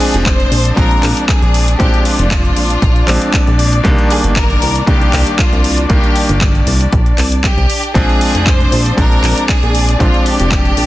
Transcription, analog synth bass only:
0.14 0.47 F1 medium
0.52 0.72 A#1 medium
0.77 0.97 A#1 medium
1.03 1.14 A#1 loud
1.42 1.75 A#1 medium
1.80 1.90 A#1 loud
2.19 2.52 F1 medium
2.57 2.77 A#1 medium
2.82 3.03 A#1 medium
3.08 3.19 A#1 loud
3.47 3.81 A#1 medium
3.85 3.95 C2 loud
4.24 4.58 G1 medium
4.62 4.82 C2 medium
4.87 5.08 C2 medium
5.14 5.24 C2 loud
5.53 5.86 C2 loud
5.90 6.01 C2 loud
6.29 6.63 G1 medium
6.67 6.87 C2 medium
6.93 7.13 A#1 medium
7.18 7.53 C2 medium
7.57 7.67 C2 medium
7.95 8.06 A#1 loud
8.35 8.68 F1 medium
8.72 8.92 A#1 medium
8.98 9.18 A#1 medium
9.23 9.34 A#1 loud
9.63 9.96 A#1 medium
10.00 10.11 A#1 medium
10.40 10.73 F1 medium
10.77 10.86 A#1 medium

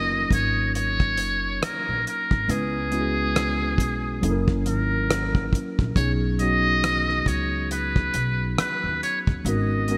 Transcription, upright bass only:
0.00 0.27 F#1 medium
0.31 1.18 G#1 medium
1.18 1.58 F#1 medium
1.62 muted upright bass stroke soft
1.88 2.04 A#1 medium
2.32 2.47 G#1 medium
2.49 3.79 C#2 loud
3.79 4.24 B1 medium
4.23 4.66 F#1 medium
4.66 5.49 G#1 medium
5.53 muted upright bass stroke soft
5.79 5.95 A#1 medium
5.97 7.23 B1 loud
7.27 8.10 C#2 medium
8.14 8.54 B1 medium
8.58 muted upright bass stroke soft
8.84 8.99 D#2 medium
9.28 9.43 D#2 medium
9.45 9.98 G#1 medium

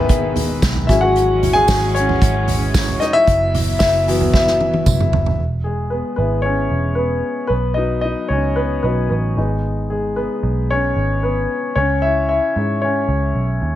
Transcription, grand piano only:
0.00 0.18 D#3 medium
0.00 0.18 G#3 medium
0.00 0.33 B3 medium
0.00 0.91 D#4 medium
0.00 0.89 E4 medium
0.00 0.31 B4 medium
0.00 0.90 D#5 medium
0.00 0.87 E5 loud
0.87 1.24 F#3 medium
0.87 1.24 G#3 soft
0.87 1.24 C#4 medium
0.87 1.01 E4 medium
0.87 1.00 E5 medium
1.01 1.52 F#4 medium
1.01 1.56 F#5 loud
1.53 1.92 G#4 medium
1.53 1.95 G#5 loud
1.68 1.92 F#3 medium
1.68 1.92 G#3 soft
1.68 1.92 C#4 medium
1.94 2.45 C#4 medium
1.94 2.44 C#5 medium
3.00 3.14 D#4 medium
3.00 3.13 D#5 medium
3.13 3.77 E4 medium
3.13 3.78 E5 loud
3.79 4.30 E4 medium
3.79 4.32 E5 loud
4.07 4.42 E3 medium
4.07 4.43 F#3 medium
4.07 4.43 B3 medium
4.33 5.10 E4 medium
4.33 5.09 E5 medium
5.64 5.91 G#3 soft
5.64 5.89 G#4 medium
5.90 6.17 B3 soft
5.90 6.15 B4 medium
6.16 7.47 G#3 soft
6.16 6.44 B3 soft
6.16 7.48 E4 soft
6.16 6.45 B4 medium
6.42 6.95 C#4 medium
6.42 6.98 C#5 medium
6.95 7.36 B3 soft
6.95 7.34 B4 medium
7.47 7.77 B4 medium
7.51 7.76 B3 medium
7.74 8.53 F#3 soft
7.74 8.53 B3 soft
7.74 8.03 D#4 medium
7.74 8.00 D#5 medium
8.01 8.29 D#4 medium
8.01 8.30 D#5 medium
8.28 8.56 C#4 medium
8.28 8.57 C#5 medium
8.56 8.83 B3 medium
8.56 8.81 B4 medium
8.83 9.08 F#3 soft
8.83 9.10 B3 medium
8.83 9.08 D#4 soft
8.83 9.08 B4 medium
9.10 9.36 B3 soft
9.10 9.47 B4 medium
9.37 9.89 G#3 soft
9.37 10.16 B3 soft
9.37 11.46 D#4 soft
9.90 10.15 G#3 soft
9.90 10.17 G#4 medium
10.16 10.66 B3 soft
10.16 10.66 B4 medium
10.71 11.20 C#4 medium
10.71 11.25 C#5 medium
11.23 11.61 B3 soft
11.23 11.60 B4 medium
11.76 12.01 C#4 medium
11.76 12.00 C#5 medium
12.02 12.28 E4 medium
12.02 12.27 E5 medium
12.29 12.56 E4 medium
12.29 12.78 E5 medium
12.56 13.32 G#3 soft
12.56 12.83 C#4 soft
12.56 13.32 E4 soft
12.82 13.59 C#4 medium
12.82 13.57 C#5 medium

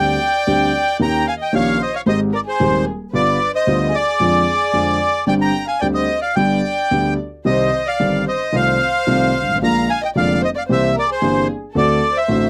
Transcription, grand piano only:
0.00 0.15 D2 medium
0.00 0.15 D3 medium
0.00 0.15 G3 soft
0.00 0.15 C4 soft
0.00 0.15 G4 medium
0.47 0.69 D2 medium
0.47 0.70 D3 medium
0.47 0.69 G3 medium
0.47 0.69 C4 medium
0.47 0.70 G4 medium
1.00 1.23 D#2 medium
1.00 1.23 D#3 medium
1.00 1.23 A#3 medium
1.00 1.22 C#4 medium
1.00 1.23 G4 medium
1.53 1.76 A#1 medium
1.53 1.76 A#2 medium
1.53 1.76 D#3 medium
1.53 1.76 A#3 medium
1.53 1.76 C#4 medium
1.53 1.76 G4 medium
2.06 2.29 G#1 medium
2.06 2.29 G#2 medium
2.06 2.29 D#3 medium
2.06 2.29 G#3 medium
2.06 2.29 C4 medium
2.06 2.29 G4 medium
2.60 2.83 D#1 medium
2.60 2.83 D#2 medium
2.60 2.83 D#3 medium
2.60 2.83 G#3 medium
2.60 2.83 C4 medium
2.60 2.83 G4 medium
3.13 3.36 G1 medium
3.13 3.36 G2 medium
3.13 3.36 D3 medium
3.13 3.36 G3 medium
3.13 3.36 B3 medium
3.13 3.36 F4 medium
3.67 3.89 D2 medium
3.67 3.89 D3 medium
3.67 3.90 G3 medium
3.67 3.90 B3 medium
3.67 3.90 F4 medium
4.20 4.43 F2 medium
4.20 4.43 D3 medium
4.20 4.43 F3 medium
4.20 4.43 G#3 medium
4.20 4.43 C4 medium
4.20 4.43 F4 medium
4.73 4.97 F2 medium
4.73 4.96 D3 medium
4.73 4.97 F3 medium
4.73 4.97 G#3 medium
4.73 4.97 C4 medium
4.73 4.97 F4 medium
5.27 5.50 G1 medium
5.27 5.50 G2 medium
5.27 5.50 D3 medium
5.27 5.50 G3 medium
5.27 5.50 C4 medium
5.27 5.50 G4 medium
5.82 6.05 D2 medium
5.82 6.05 D3 medium
5.82 6.05 G3 medium
5.82 6.05 C4 medium
5.82 6.05 G4 medium
6.36 6.59 G1 medium
6.36 6.59 G2 medium
6.36 6.59 D3 medium
6.36 6.59 G3 medium
6.36 6.59 B3 medium
6.36 6.60 G4 medium
6.91 7.14 D2 medium
6.91 7.14 D3 medium
6.91 7.14 G3 medium
6.91 7.14 B3 medium
6.91 7.14 G4 medium
7.45 7.68 C2 medium
7.45 7.68 C3 medium
7.45 7.68 D#3 medium
7.45 7.68 G3 medium
7.45 7.68 C4 medium
7.45 7.68 G4 medium
8.00 8.23 G1 medium
8.00 8.23 G2 medium
8.00 8.23 D#3 medium
8.00 8.23 G3 medium
8.00 8.23 C4 medium
8.00 8.23 G4 medium
8.52 8.76 C2 medium
8.52 8.76 C3 medium
8.52 8.76 D#3 medium
8.52 8.76 A3 medium
8.52 8.76 C4 medium
8.52 8.76 F4 medium
9.07 9.30 C2 medium
9.07 9.30 C3 medium
9.07 9.30 D#3 medium
9.07 9.30 A3 medium
9.07 9.30 C4 medium
9.07 9.30 F4 medium
9.41 9.48 G1 soft
9.49 9.55 G#1 soft
9.55 9.62 A1 medium
9.62 9.85 A#1 medium
9.62 9.85 A#2 medium
9.62 9.85 D3 medium
9.62 9.85 G#3 medium
9.62 9.85 A#3 medium
9.62 9.85 F4 medium
10.15 10.38 F1 medium
10.15 10.38 F2 medium
10.15 10.38 D3 medium
10.15 10.38 G#3 medium
10.15 10.38 A#3 medium
10.15 10.39 F4 medium
10.69 10.92 C2 medium
10.69 10.92 C3 medium
10.69 10.92 E3 medium
10.69 10.92 A#3 medium
10.69 10.92 C4 medium
10.69 10.92 G4 medium
11.22 11.45 G1 medium
11.22 11.44 G2 medium
11.22 11.44 E3 medium
11.22 11.44 A#3 medium
11.22 11.45 C4 medium
11.22 11.45 G4 medium
11.75 11.98 D2 medium
11.75 11.98 D3 medium
11.75 11.98 A3 medium
11.75 11.98 C4 medium
11.75 11.98 F#4 medium
12.28 12.50 A1 medium
12.28 12.50 A2 medium
12.28 12.50 D3 medium
12.28 12.50 A3 medium
12.28 12.50 C4 medium
12.28 12.50 F#4 medium

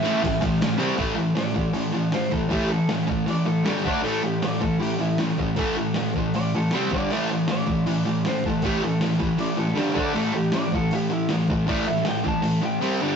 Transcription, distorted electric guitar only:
0.03 0.21 A2 medium
0.03 0.21 E3 loud
0.03 0.22 A3 loud
0.22 0.40 A2 medium
0.22 0.40 E3 medium
0.41 0.59 A2 medium
0.41 0.59 E3 medium
0.62 0.77 A2 medium
0.62 0.78 E3 medium
0.78 0.96 C3 medium
0.78 0.97 G3 loud
0.78 0.98 C4 loud
0.97 1.14 A2 medium
0.97 1.15 E3 medium
0.97 1.17 A3 medium
1.16 1.34 A2 medium
1.16 1.34 E3 medium
1.35 1.53 A2 medium
1.35 1.54 E3 medium
1.54 1.72 A2 medium
1.54 1.72 E3 medium
1.73 1.91 A2 medium
1.73 1.92 E3 medium
1.92 2.11 A2 medium
1.92 2.11 E3 medium
2.13 2.30 A2 medium
2.13 2.30 E3 medium
2.31 2.48 A2 medium
2.31 2.49 E3 medium
2.49 2.68 A2 medium
2.49 2.69 E3 medium
2.49 2.70 A3 medium
2.70 2.87 A2 medium
2.70 2.87 E3 medium
2.89 3.06 A2 medium
2.89 3.07 E3 medium
3.07 3.25 A2 medium
3.07 3.26 E3 medium
3.27 3.45 A2 medium
3.27 3.45 E3 medium
3.46 3.64 A2 medium
3.46 3.64 E3 medium
3.65 3.83 G2 medium
3.65 3.84 D3 loud
3.65 3.84 G3 loud
3.85 4.03 D3 medium
3.85 4.02 A3 medium
3.85 4.03 D4 loud
4.03 4.22 A2 medium
4.03 4.22 E3 medium
4.03 4.22 A3 medium
4.23 4.40 A2 medium
4.23 4.41 E3 medium
4.42 4.60 A2 medium
4.42 4.60 E3 medium
4.61 4.78 A2 medium
4.61 4.79 E3 medium
4.80 4.98 A2 medium
4.80 4.98 E3 medium
4.99 5.17 A2 medium
4.99 5.17 E3 medium
5.19 5.36 A2 medium
5.19 5.36 E3 medium
5.39 5.55 A2 medium
5.39 5.56 E3 medium
5.57 5.75 A2 medium
5.57 5.76 E3 medium
5.57 5.76 A3 loud
5.77 5.94 A2 medium
5.77 5.94 E3 medium
5.96 6.13 A2 medium
5.96 6.13 E3 medium
6.16 6.32 A2 medium
6.16 6.33 E3 medium
6.35 6.51 A2 medium
6.35 6.51 E3 medium
6.55 6.71 A2 medium
6.55 6.71 E3 medium
6.73 6.90 C3 medium
6.73 6.90 G3 medium
6.73 6.91 C4 loud
6.93 7.10 G2 medium
6.93 7.10 D3 medium
6.93 7.10 G3 loud
7.11 7.29 A2 medium
7.11 7.29 E3 medium
7.11 7.29 A3 medium
7.30 7.47 A2 medium
7.30 7.46 E3 medium
7.48 7.65 A2 medium
7.48 7.65 E3 medium
7.66 7.84 A2 medium
7.66 7.84 E3 medium
7.86 8.04 A2 medium
7.86 8.03 E3 medium
8.05 8.22 A2 medium
8.05 8.22 E3 medium
8.25 8.42 A2 medium
8.25 8.42 E3 medium
8.46 8.62 A2 medium
8.46 8.62 E3 medium
8.63 8.81 A2 medium
8.63 8.81 E3 medium
8.63 8.82 A3 medium
8.83 9.00 A2 medium
8.83 9.00 E3 medium
9.01 9.18 A2 medium
9.01 9.19 E3 medium
9.19 9.37 A2 medium
9.19 9.37 E3 medium
9.38 9.56 A2 medium
9.38 9.56 E3 medium
9.57 9.75 A2 medium
9.57 9.75 E3 medium
9.75 9.94 G2 medium
9.75 9.93 D3 medium
9.75 9.94 G3 loud
9.94 10.13 D3 medium
9.94 10.13 A3 medium
9.94 10.14 D4 loud
10.14 10.32 A2 medium
10.14 10.33 E3 loud
10.14 10.33 A3 medium
10.33 10.51 A2 medium
10.33 10.51 E3 medium
10.53 10.70 A2 medium
10.53 10.70 E3 medium
10.73 10.90 A2 medium
10.73 10.90 E3 medium
10.92 11.09 A2 medium
10.92 11.09 E3 medium
11.10 11.27 A2 medium
11.10 11.28 E3 medium
11.30 11.47 A2 medium
11.30 11.47 E3 medium
11.50 11.66 A2 medium
11.50 11.67 E3 medium
11.67 11.85 A2 medium
11.67 11.86 E3 loud
11.67 11.86 A3 medium
11.88 12.04 A2 medium
11.88 12.04 E3 medium
12.05 12.22 A2 medium
12.05 12.23 E3 medium
12.24 12.41 A2 medium
12.24 12.41 E3 medium
12.42 12.60 A2 medium
12.42 12.60 E3 medium
12.62 12.79 A2 medium
12.62 12.80 E3 medium
12.80 12.99 C3 medium
12.80 12.99 G3 loud
12.80 13.00 C4 loud
13.00 13.16 G2 medium
13.00 13.16 D3 loud
13.00 13.16 G3 loud

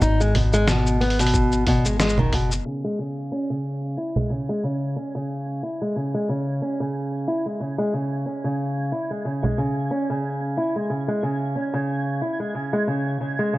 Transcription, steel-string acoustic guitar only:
0.02 0.20 D#4 medium
0.21 0.34 G#3 medium
0.35 0.52 B2 medium
0.54 0.67 G#3 loud
0.68 0.99 B2 loud
1.01 1.17 B3 medium
1.20 1.66 B2 loud
1.67 1.84 B2 loud
1.86 1.99 G#3 medium
2.00 2.17 G#3 medium
2.19 2.32 D#3 medium
2.33 2.50 B2 medium
2.66 2.83 C#3 medium
2.84 2.98 G#3 medium
2.99 3.30 C#3 medium
3.32 3.48 C#4 medium
3.50 3.96 C#3 medium
3.97 4.15 E4 medium
4.16 4.30 G#3 medium
4.30 4.48 C#3 medium
4.49 4.63 G#3 medium
4.64 4.95 C#3 medium
4.96 5.13 C#4 medium
5.15 5.61 C#3 medium
5.63 5.80 E4 medium
5.82 5.95 G#3 medium
5.96 6.13 C#3 medium
6.14 6.28 G#3 medium
6.29 6.60 C#3 medium
6.62 6.78 C#4 medium
6.80 7.26 C#3 medium
7.28 7.45 E4 medium
7.46 7.60 G#3 medium
7.60 7.78 C#3 medium
7.78 7.92 G#3 medium
7.94 8.25 C#3 medium
8.26 8.43 C#4 medium
8.44 8.91 C#3 medium
8.92 9.10 E4 medium
9.11 9.24 G#3 medium
9.25 9.43 C#3 medium
9.43 9.57 G#3 medium
9.58 9.90 C#3 medium
9.91 10.08 C#4 medium
10.10 10.56 C#3 medium
10.57 10.75 E4 medium
10.76 10.89 G#3 medium
10.90 11.07 C#3 medium
11.08 11.22 G#3 medium
11.23 11.54 C#3 medium
11.56 11.72 C#4 medium
11.74 12.20 C#3 medium
12.22 12.39 E4 medium
12.40 12.54 G#3 medium
12.55 12.72 C#3 medium
12.73 12.87 G#3 medium
12.88 13.19 C#3 medium
13.21 13.38 C#3 medium
13.39 13.53 G#3 medium
13.53 13.58 C#3 medium

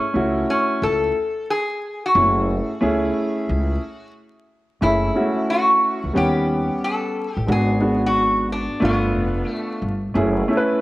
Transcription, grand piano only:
0.14 1.13 A3 medium
0.14 1.13 C#4 medium
0.14 1.13 E4 medium
0.14 1.14 F#4 medium
2.14 2.23 G#3 medium
2.14 2.68 C#4 medium
2.14 2.69 E4 medium
2.14 2.69 G#4 medium
2.21 2.71 A3 medium
2.81 3.80 A3 medium
2.81 3.80 C#4 medium
2.81 3.80 E4 medium
2.81 3.81 G#4 medium
4.81 5.08 A3 medium
4.81 5.09 C#4 medium
4.81 5.09 E4 medium
4.81 5.10 G#4 medium
5.14 5.23 G#3 medium
5.14 6.14 C#4 medium
5.14 6.14 E4 medium
5.14 6.14 F#4 medium
5.20 6.16 A3 medium
6.13 7.23 G3 medium
6.13 7.23 B3 medium
6.13 7.24 C#4 medium
6.13 7.24 F#5 medium
7.46 7.75 G#3 medium
7.46 7.75 B3 medium
7.46 7.75 D4 medium
7.46 7.76 F#4 medium
7.80 8.79 G#3 medium
7.80 8.80 B3 medium
7.80 8.80 D4 medium
7.80 8.80 F#4 medium
8.80 9.89 A3 medium
8.80 9.90 B3 medium
8.80 9.91 D4 medium
8.80 9.91 F4 medium
10.14 10.42 A3 medium
10.14 10.42 C#4 medium
10.14 10.43 E4 medium
10.14 10.43 G#4 medium
10.48 10.81 A3 medium
10.48 10.81 C#4 medium
10.48 10.81 E4 medium
10.48 10.58 A4 medium
10.57 10.81 B4 medium

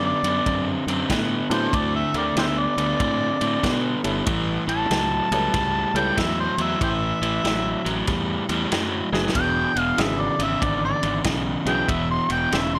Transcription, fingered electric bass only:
0.00 0.12 F#2 medium
0.23 0.39 F#2 medium
0.47 0.76 F#2 medium
0.87 1.03 F#2 medium
1.10 1.40 A2 medium
1.50 1.66 A2 medium
1.73 2.03 D2 medium
2.14 2.30 D2 medium
2.36 2.66 D2 loud
2.77 2.93 D2 medium
3.00 3.30 A2 medium
3.41 3.57 A2 medium
3.64 3.93 B2 medium
4.04 4.21 G1 medium
4.27 4.57 A1 medium
4.68 4.84 A1 loud
4.90 5.20 C#2 medium
5.31 5.47 C#2 loud
5.54 5.84 C#2 medium
5.94 6.10 C#2 medium
6.18 6.47 E2 medium
6.58 6.74 E2 medium
6.81 7.11 A1 medium
7.22 7.38 A1 medium
7.44 7.74 A1 medium
7.86 8.02 A1 loud
8.08 8.38 E2 medium
8.49 8.65 E2 medium
8.72 9.01 F#2 medium
9.12 9.28 F#1 medium
9.35 9.65 E1 medium
9.76 9.92 E1 medium
9.98 10.28 G#1 medium
10.39 10.55 G#1 medium
10.62 10.92 G#1 loud
11.03 11.19 G#1 loud
11.25 11.55 B1 medium
11.66 11.82 B1 medium
11.89 12.19 E1 medium
12.30 12.46 E1 medium
12.52 12.79 E1 medium

